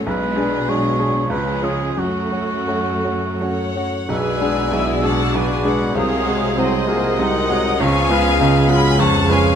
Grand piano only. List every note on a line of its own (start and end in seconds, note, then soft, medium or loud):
0.06 0.37 B1 medium
0.37 0.65 D4 soft
0.37 0.65 G#4 soft
0.68 0.96 G#3 soft
0.68 0.97 D4 soft
0.68 0.97 G#4 soft
0.99 1.28 D4 soft
0.99 1.28 G#4 soft
1.30 1.62 C#2 medium
1.62 1.94 C#4 soft
1.62 1.94 F4 soft
1.97 2.32 F#2 soft
2.32 2.64 C#4 soft
2.32 2.64 F#4 soft
2.68 3.01 A3 soft
2.68 3.01 C#4 soft
2.68 3.02 F#4 soft
3.04 3.38 C#4 soft
3.04 3.38 F#4 soft
3.41 3.73 A3 soft
3.41 3.73 C#4 soft
3.41 3.73 F#4 soft
3.76 4.06 C#4 soft
3.76 4.06 F#4 soft
4.09 4.40 B1 medium
4.09 4.40 B2 soft
4.41 4.69 G#3 soft
4.41 4.69 D4 soft
4.41 4.70 G#4 soft
4.72 5.02 B1 soft
4.72 5.02 B2 medium
5.03 5.31 G#3 soft
5.03 5.31 D4 soft
5.03 5.31 G#4 soft
5.34 5.64 B1 soft
5.34 5.64 B2 soft
5.64 5.92 G#3 soft
5.64 5.93 D4 soft
5.64 5.93 G#4 soft
5.95 6.26 C2 medium
5.95 6.26 C3 medium
6.26 6.55 G#3 soft
6.26 6.55 F#4 soft
6.26 6.55 G#4 soft
6.58 6.88 C2 soft
6.58 6.88 C3 medium
6.89 7.16 G#3 soft
6.89 7.16 F#4 soft
6.89 7.16 G#4 medium
7.19 7.49 C2 medium
7.19 7.49 C3 medium
7.50 7.77 G#3 soft
7.50 7.77 F#4 soft
7.50 7.77 G#4 soft
7.80 8.10 C#2 medium
7.80 8.10 C#3 medium
8.11 8.38 G#3 soft
8.11 8.38 F4 soft
8.11 8.38 B4 medium
8.41 8.69 C#2 medium
8.41 8.69 C#3 medium
8.70 8.97 G#3 medium
8.70 8.97 F4 medium
8.70 8.97 B4 medium
8.99 9.28 C#2 medium
8.99 9.28 C#3 medium
9.29 9.55 G#3 medium
9.29 9.55 F4 medium
9.29 9.55 B4 medium